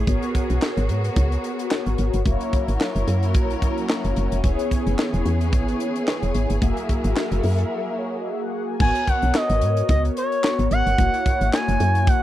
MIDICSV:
0, 0, Header, 1, 6, 480
1, 0, Start_track
1, 0, Key_signature, 5, "minor"
1, 0, Tempo, 545455
1, 65, Time_signature, 4, 2, 24, 8
1, 10761, End_track
2, 0, Start_track
2, 0, Title_t, "Analog synth lead"
2, 0, Program_c, 0, 81
2, 7756, Note_on_c, 0, 80, 102
2, 7994, Note_on_c, 0, 78, 92
2, 8008, Note_off_c, 0, 80, 0
2, 8233, Note_on_c, 0, 75, 89
2, 8246, Note_off_c, 0, 78, 0
2, 8707, Note_off_c, 0, 75, 0
2, 8712, Note_on_c, 0, 75, 93
2, 8819, Note_off_c, 0, 75, 0
2, 8954, Note_on_c, 0, 73, 98
2, 9396, Note_off_c, 0, 73, 0
2, 9434, Note_on_c, 0, 78, 101
2, 10115, Note_off_c, 0, 78, 0
2, 10155, Note_on_c, 0, 80, 102
2, 10631, Note_on_c, 0, 78, 104
2, 10645, Note_off_c, 0, 80, 0
2, 10761, Note_off_c, 0, 78, 0
2, 10761, End_track
3, 0, Start_track
3, 0, Title_t, "Analog polysynth"
3, 0, Program_c, 1, 90
3, 60, Note_on_c, 1, 59, 70
3, 66, Note_on_c, 1, 66, 72
3, 71, Note_on_c, 1, 70, 67
3, 76, Note_on_c, 1, 73, 77
3, 1947, Note_off_c, 1, 59, 0
3, 1950, Note_off_c, 1, 66, 0
3, 1953, Note_off_c, 1, 70, 0
3, 1955, Note_off_c, 1, 73, 0
3, 1981, Note_on_c, 1, 58, 77
3, 1985, Note_on_c, 1, 64, 73
3, 1990, Note_on_c, 1, 66, 76
3, 1995, Note_on_c, 1, 73, 83
3, 3868, Note_off_c, 1, 58, 0
3, 3870, Note_off_c, 1, 64, 0
3, 3872, Note_off_c, 1, 66, 0
3, 3875, Note_off_c, 1, 73, 0
3, 3899, Note_on_c, 1, 59, 73
3, 3902, Note_on_c, 1, 64, 68
3, 3908, Note_on_c, 1, 68, 76
3, 3912, Note_on_c, 1, 73, 87
3, 5787, Note_off_c, 1, 59, 0
3, 5788, Note_off_c, 1, 64, 0
3, 5792, Note_off_c, 1, 68, 0
3, 5794, Note_off_c, 1, 73, 0
3, 5817, Note_on_c, 1, 58, 81
3, 5820, Note_on_c, 1, 66, 72
3, 5826, Note_on_c, 1, 68, 66
3, 5830, Note_on_c, 1, 76, 84
3, 7004, Note_off_c, 1, 76, 0
3, 7025, Note_on_c, 1, 73, 63
3, 7153, Note_off_c, 1, 73, 0
3, 7160, Note_on_c, 1, 75, 70
3, 7260, Note_off_c, 1, 75, 0
3, 7262, Note_on_c, 1, 76, 76
3, 7391, Note_off_c, 1, 76, 0
3, 7396, Note_on_c, 1, 78, 68
3, 7626, Note_off_c, 1, 78, 0
3, 7635, Note_on_c, 1, 80, 68
3, 7706, Note_off_c, 1, 58, 0
3, 7708, Note_off_c, 1, 66, 0
3, 7711, Note_off_c, 1, 68, 0
3, 7735, Note_on_c, 1, 59, 68
3, 7739, Note_on_c, 1, 66, 60
3, 7744, Note_on_c, 1, 70, 65
3, 7748, Note_on_c, 1, 73, 71
3, 7865, Note_off_c, 1, 80, 0
3, 9625, Note_off_c, 1, 59, 0
3, 9627, Note_off_c, 1, 66, 0
3, 9630, Note_off_c, 1, 70, 0
3, 9632, Note_off_c, 1, 73, 0
3, 9659, Note_on_c, 1, 58, 64
3, 9664, Note_on_c, 1, 64, 61
3, 9669, Note_on_c, 1, 66, 60
3, 9673, Note_on_c, 1, 73, 72
3, 10761, Note_off_c, 1, 58, 0
3, 10761, Note_off_c, 1, 64, 0
3, 10761, Note_off_c, 1, 66, 0
3, 10761, Note_off_c, 1, 73, 0
3, 10761, End_track
4, 0, Start_track
4, 0, Title_t, "String section"
4, 0, Program_c, 2, 48
4, 0, Note_on_c, 2, 68, 81
4, 66, Note_on_c, 2, 66, 91
4, 67, Note_on_c, 2, 59, 70
4, 1950, Note_off_c, 2, 68, 0
4, 1967, Note_off_c, 2, 59, 0
4, 1967, Note_off_c, 2, 66, 0
4, 1985, Note_on_c, 2, 54, 77
4, 1985, Note_on_c, 2, 61, 75
4, 1985, Note_on_c, 2, 64, 72
4, 1986, Note_on_c, 2, 70, 89
4, 3886, Note_off_c, 2, 54, 0
4, 3886, Note_off_c, 2, 64, 0
4, 3887, Note_off_c, 2, 70, 0
4, 3907, Note_on_c, 2, 52, 76
4, 3907, Note_on_c, 2, 59, 76
4, 3907, Note_on_c, 2, 68, 91
4, 5790, Note_off_c, 2, 61, 0
4, 5807, Note_off_c, 2, 52, 0
4, 5807, Note_off_c, 2, 59, 0
4, 5824, Note_on_c, 2, 54, 77
4, 5824, Note_on_c, 2, 64, 73
4, 5825, Note_on_c, 2, 70, 87
4, 7711, Note_off_c, 2, 68, 0
4, 7725, Note_off_c, 2, 64, 0
4, 7726, Note_off_c, 2, 54, 0
4, 7726, Note_off_c, 2, 70, 0
4, 10761, End_track
5, 0, Start_track
5, 0, Title_t, "FM bass"
5, 0, Program_c, 3, 39
5, 64, Note_on_c, 3, 32, 105
5, 168, Note_off_c, 3, 32, 0
5, 442, Note_on_c, 3, 35, 84
5, 522, Note_off_c, 3, 35, 0
5, 680, Note_on_c, 3, 32, 105
5, 783, Note_on_c, 3, 44, 92
5, 796, Note_off_c, 3, 32, 0
5, 969, Note_off_c, 3, 44, 0
5, 1025, Note_on_c, 3, 37, 101
5, 1210, Note_off_c, 3, 37, 0
5, 1642, Note_on_c, 3, 32, 81
5, 1723, Note_off_c, 3, 32, 0
5, 1748, Note_on_c, 3, 32, 97
5, 1850, Note_off_c, 3, 32, 0
5, 1881, Note_on_c, 3, 31, 96
5, 1962, Note_off_c, 3, 31, 0
5, 1986, Note_on_c, 3, 30, 109
5, 2089, Note_off_c, 3, 30, 0
5, 2361, Note_on_c, 3, 32, 84
5, 2442, Note_off_c, 3, 32, 0
5, 2601, Note_on_c, 3, 30, 98
5, 2682, Note_off_c, 3, 30, 0
5, 2707, Note_on_c, 3, 42, 98
5, 2946, Note_on_c, 3, 34, 94
5, 2959, Note_off_c, 3, 42, 0
5, 3130, Note_off_c, 3, 34, 0
5, 3561, Note_on_c, 3, 30, 88
5, 3642, Note_off_c, 3, 30, 0
5, 3669, Note_on_c, 3, 30, 96
5, 3771, Note_off_c, 3, 30, 0
5, 3802, Note_on_c, 3, 29, 86
5, 3882, Note_off_c, 3, 29, 0
5, 3906, Note_on_c, 3, 28, 101
5, 4009, Note_off_c, 3, 28, 0
5, 4282, Note_on_c, 3, 30, 98
5, 4362, Note_off_c, 3, 30, 0
5, 4520, Note_on_c, 3, 28, 110
5, 4601, Note_off_c, 3, 28, 0
5, 4625, Note_on_c, 3, 40, 97
5, 4866, Note_on_c, 3, 32, 98
5, 4879, Note_off_c, 3, 40, 0
5, 5050, Note_off_c, 3, 32, 0
5, 5480, Note_on_c, 3, 28, 86
5, 5561, Note_off_c, 3, 28, 0
5, 5585, Note_on_c, 3, 32, 88
5, 5689, Note_off_c, 3, 32, 0
5, 5720, Note_on_c, 3, 31, 90
5, 5801, Note_off_c, 3, 31, 0
5, 5825, Note_on_c, 3, 30, 102
5, 5929, Note_off_c, 3, 30, 0
5, 6199, Note_on_c, 3, 32, 98
5, 6280, Note_off_c, 3, 32, 0
5, 6439, Note_on_c, 3, 30, 98
5, 6520, Note_off_c, 3, 30, 0
5, 6545, Note_on_c, 3, 42, 103
5, 6730, Note_off_c, 3, 42, 0
5, 7746, Note_on_c, 3, 32, 104
5, 7849, Note_off_c, 3, 32, 0
5, 8121, Note_on_c, 3, 35, 84
5, 8202, Note_off_c, 3, 35, 0
5, 8358, Note_on_c, 3, 32, 105
5, 8462, Note_on_c, 3, 44, 98
5, 8476, Note_off_c, 3, 32, 0
5, 8648, Note_off_c, 3, 44, 0
5, 8704, Note_on_c, 3, 37, 103
5, 8889, Note_off_c, 3, 37, 0
5, 9319, Note_on_c, 3, 32, 91
5, 9401, Note_off_c, 3, 32, 0
5, 9425, Note_on_c, 3, 32, 99
5, 9529, Note_off_c, 3, 32, 0
5, 9559, Note_on_c, 3, 31, 94
5, 9641, Note_off_c, 3, 31, 0
5, 9667, Note_on_c, 3, 30, 109
5, 9770, Note_off_c, 3, 30, 0
5, 10042, Note_on_c, 3, 32, 92
5, 10122, Note_off_c, 3, 32, 0
5, 10281, Note_on_c, 3, 30, 103
5, 10362, Note_off_c, 3, 30, 0
5, 10386, Note_on_c, 3, 42, 104
5, 10625, Note_on_c, 3, 34, 98
5, 10638, Note_off_c, 3, 42, 0
5, 10761, Note_off_c, 3, 34, 0
5, 10761, End_track
6, 0, Start_track
6, 0, Title_t, "Drums"
6, 64, Note_on_c, 9, 42, 71
6, 65, Note_on_c, 9, 36, 93
6, 152, Note_off_c, 9, 42, 0
6, 153, Note_off_c, 9, 36, 0
6, 197, Note_on_c, 9, 42, 51
6, 285, Note_off_c, 9, 42, 0
6, 306, Note_on_c, 9, 36, 87
6, 308, Note_on_c, 9, 42, 69
6, 394, Note_off_c, 9, 36, 0
6, 396, Note_off_c, 9, 42, 0
6, 439, Note_on_c, 9, 42, 45
6, 527, Note_off_c, 9, 42, 0
6, 549, Note_on_c, 9, 38, 116
6, 549, Note_on_c, 9, 39, 82
6, 637, Note_off_c, 9, 38, 0
6, 637, Note_off_c, 9, 39, 0
6, 680, Note_on_c, 9, 42, 51
6, 768, Note_off_c, 9, 42, 0
6, 784, Note_on_c, 9, 42, 70
6, 872, Note_off_c, 9, 42, 0
6, 919, Note_on_c, 9, 42, 51
6, 1007, Note_off_c, 9, 42, 0
6, 1023, Note_on_c, 9, 42, 86
6, 1025, Note_on_c, 9, 36, 108
6, 1111, Note_off_c, 9, 42, 0
6, 1113, Note_off_c, 9, 36, 0
6, 1162, Note_on_c, 9, 42, 46
6, 1250, Note_off_c, 9, 42, 0
6, 1268, Note_on_c, 9, 42, 64
6, 1356, Note_off_c, 9, 42, 0
6, 1401, Note_on_c, 9, 42, 45
6, 1489, Note_off_c, 9, 42, 0
6, 1508, Note_on_c, 9, 38, 115
6, 1508, Note_on_c, 9, 39, 92
6, 1596, Note_off_c, 9, 38, 0
6, 1596, Note_off_c, 9, 39, 0
6, 1640, Note_on_c, 9, 42, 51
6, 1728, Note_off_c, 9, 42, 0
6, 1744, Note_on_c, 9, 42, 77
6, 1832, Note_off_c, 9, 42, 0
6, 1879, Note_on_c, 9, 42, 57
6, 1967, Note_off_c, 9, 42, 0
6, 1983, Note_on_c, 9, 42, 78
6, 1985, Note_on_c, 9, 36, 95
6, 2071, Note_off_c, 9, 42, 0
6, 2073, Note_off_c, 9, 36, 0
6, 2117, Note_on_c, 9, 42, 51
6, 2205, Note_off_c, 9, 42, 0
6, 2227, Note_on_c, 9, 36, 87
6, 2227, Note_on_c, 9, 42, 70
6, 2315, Note_off_c, 9, 36, 0
6, 2315, Note_off_c, 9, 42, 0
6, 2361, Note_on_c, 9, 42, 50
6, 2449, Note_off_c, 9, 42, 0
6, 2471, Note_on_c, 9, 38, 115
6, 2471, Note_on_c, 9, 39, 88
6, 2559, Note_off_c, 9, 38, 0
6, 2559, Note_off_c, 9, 39, 0
6, 2602, Note_on_c, 9, 42, 56
6, 2690, Note_off_c, 9, 42, 0
6, 2707, Note_on_c, 9, 42, 78
6, 2795, Note_off_c, 9, 42, 0
6, 2839, Note_on_c, 9, 42, 54
6, 2927, Note_off_c, 9, 42, 0
6, 2942, Note_on_c, 9, 42, 84
6, 2945, Note_on_c, 9, 36, 108
6, 3030, Note_off_c, 9, 42, 0
6, 3033, Note_off_c, 9, 36, 0
6, 3084, Note_on_c, 9, 42, 48
6, 3172, Note_off_c, 9, 42, 0
6, 3186, Note_on_c, 9, 36, 90
6, 3188, Note_on_c, 9, 42, 65
6, 3274, Note_off_c, 9, 36, 0
6, 3276, Note_off_c, 9, 42, 0
6, 3323, Note_on_c, 9, 42, 41
6, 3411, Note_off_c, 9, 42, 0
6, 3429, Note_on_c, 9, 38, 120
6, 3429, Note_on_c, 9, 39, 88
6, 3517, Note_off_c, 9, 38, 0
6, 3517, Note_off_c, 9, 39, 0
6, 3559, Note_on_c, 9, 42, 55
6, 3647, Note_off_c, 9, 42, 0
6, 3665, Note_on_c, 9, 42, 73
6, 3753, Note_off_c, 9, 42, 0
6, 3800, Note_on_c, 9, 42, 57
6, 3888, Note_off_c, 9, 42, 0
6, 3905, Note_on_c, 9, 42, 79
6, 3906, Note_on_c, 9, 36, 98
6, 3993, Note_off_c, 9, 42, 0
6, 3994, Note_off_c, 9, 36, 0
6, 4040, Note_on_c, 9, 42, 50
6, 4128, Note_off_c, 9, 42, 0
6, 4148, Note_on_c, 9, 36, 76
6, 4150, Note_on_c, 9, 42, 66
6, 4236, Note_off_c, 9, 36, 0
6, 4238, Note_off_c, 9, 42, 0
6, 4282, Note_on_c, 9, 42, 47
6, 4370, Note_off_c, 9, 42, 0
6, 4391, Note_on_c, 9, 38, 108
6, 4391, Note_on_c, 9, 39, 89
6, 4479, Note_off_c, 9, 38, 0
6, 4479, Note_off_c, 9, 39, 0
6, 4521, Note_on_c, 9, 42, 52
6, 4609, Note_off_c, 9, 42, 0
6, 4625, Note_on_c, 9, 42, 67
6, 4713, Note_off_c, 9, 42, 0
6, 4760, Note_on_c, 9, 42, 54
6, 4848, Note_off_c, 9, 42, 0
6, 4863, Note_on_c, 9, 42, 87
6, 4865, Note_on_c, 9, 36, 109
6, 4951, Note_off_c, 9, 42, 0
6, 4953, Note_off_c, 9, 36, 0
6, 5002, Note_on_c, 9, 42, 47
6, 5090, Note_off_c, 9, 42, 0
6, 5106, Note_on_c, 9, 42, 69
6, 5194, Note_off_c, 9, 42, 0
6, 5242, Note_on_c, 9, 42, 45
6, 5330, Note_off_c, 9, 42, 0
6, 5349, Note_on_c, 9, 38, 117
6, 5349, Note_on_c, 9, 39, 88
6, 5437, Note_off_c, 9, 38, 0
6, 5437, Note_off_c, 9, 39, 0
6, 5479, Note_on_c, 9, 42, 51
6, 5567, Note_off_c, 9, 42, 0
6, 5583, Note_on_c, 9, 42, 79
6, 5671, Note_off_c, 9, 42, 0
6, 5718, Note_on_c, 9, 42, 55
6, 5806, Note_off_c, 9, 42, 0
6, 5823, Note_on_c, 9, 42, 74
6, 5824, Note_on_c, 9, 36, 98
6, 5911, Note_off_c, 9, 42, 0
6, 5912, Note_off_c, 9, 36, 0
6, 5957, Note_on_c, 9, 42, 50
6, 6045, Note_off_c, 9, 42, 0
6, 6065, Note_on_c, 9, 42, 72
6, 6066, Note_on_c, 9, 36, 82
6, 6153, Note_off_c, 9, 42, 0
6, 6154, Note_off_c, 9, 36, 0
6, 6197, Note_on_c, 9, 42, 46
6, 6285, Note_off_c, 9, 42, 0
6, 6307, Note_on_c, 9, 38, 104
6, 6307, Note_on_c, 9, 39, 84
6, 6395, Note_off_c, 9, 38, 0
6, 6395, Note_off_c, 9, 39, 0
6, 6438, Note_on_c, 9, 42, 53
6, 6526, Note_off_c, 9, 42, 0
6, 6541, Note_on_c, 9, 46, 74
6, 6629, Note_off_c, 9, 46, 0
6, 6675, Note_on_c, 9, 42, 53
6, 6763, Note_off_c, 9, 42, 0
6, 7745, Note_on_c, 9, 36, 104
6, 7745, Note_on_c, 9, 49, 94
6, 7833, Note_off_c, 9, 36, 0
6, 7833, Note_off_c, 9, 49, 0
6, 7877, Note_on_c, 9, 42, 54
6, 7965, Note_off_c, 9, 42, 0
6, 7986, Note_on_c, 9, 36, 80
6, 7987, Note_on_c, 9, 42, 71
6, 8074, Note_off_c, 9, 36, 0
6, 8075, Note_off_c, 9, 42, 0
6, 8116, Note_on_c, 9, 42, 48
6, 8204, Note_off_c, 9, 42, 0
6, 8227, Note_on_c, 9, 38, 109
6, 8227, Note_on_c, 9, 39, 89
6, 8315, Note_off_c, 9, 38, 0
6, 8315, Note_off_c, 9, 39, 0
6, 8356, Note_on_c, 9, 42, 57
6, 8444, Note_off_c, 9, 42, 0
6, 8460, Note_on_c, 9, 42, 79
6, 8548, Note_off_c, 9, 42, 0
6, 8596, Note_on_c, 9, 42, 55
6, 8684, Note_off_c, 9, 42, 0
6, 8701, Note_on_c, 9, 42, 89
6, 8704, Note_on_c, 9, 36, 111
6, 8789, Note_off_c, 9, 42, 0
6, 8792, Note_off_c, 9, 36, 0
6, 8842, Note_on_c, 9, 42, 45
6, 8930, Note_off_c, 9, 42, 0
6, 8947, Note_on_c, 9, 42, 69
6, 9035, Note_off_c, 9, 42, 0
6, 9082, Note_on_c, 9, 42, 44
6, 9170, Note_off_c, 9, 42, 0
6, 9189, Note_on_c, 9, 38, 126
6, 9189, Note_on_c, 9, 39, 99
6, 9277, Note_off_c, 9, 38, 0
6, 9277, Note_off_c, 9, 39, 0
6, 9320, Note_on_c, 9, 42, 54
6, 9408, Note_off_c, 9, 42, 0
6, 9425, Note_on_c, 9, 42, 77
6, 9513, Note_off_c, 9, 42, 0
6, 9562, Note_on_c, 9, 42, 59
6, 9650, Note_off_c, 9, 42, 0
6, 9666, Note_on_c, 9, 36, 101
6, 9667, Note_on_c, 9, 42, 90
6, 9754, Note_off_c, 9, 36, 0
6, 9755, Note_off_c, 9, 42, 0
6, 9802, Note_on_c, 9, 42, 50
6, 9890, Note_off_c, 9, 42, 0
6, 9907, Note_on_c, 9, 36, 94
6, 9909, Note_on_c, 9, 42, 79
6, 9995, Note_off_c, 9, 36, 0
6, 9997, Note_off_c, 9, 42, 0
6, 10041, Note_on_c, 9, 42, 47
6, 10129, Note_off_c, 9, 42, 0
6, 10151, Note_on_c, 9, 38, 109
6, 10151, Note_on_c, 9, 39, 97
6, 10239, Note_off_c, 9, 38, 0
6, 10239, Note_off_c, 9, 39, 0
6, 10281, Note_on_c, 9, 42, 56
6, 10369, Note_off_c, 9, 42, 0
6, 10385, Note_on_c, 9, 42, 75
6, 10473, Note_off_c, 9, 42, 0
6, 10517, Note_on_c, 9, 42, 55
6, 10605, Note_off_c, 9, 42, 0
6, 10622, Note_on_c, 9, 42, 93
6, 10624, Note_on_c, 9, 36, 124
6, 10710, Note_off_c, 9, 42, 0
6, 10712, Note_off_c, 9, 36, 0
6, 10761, End_track
0, 0, End_of_file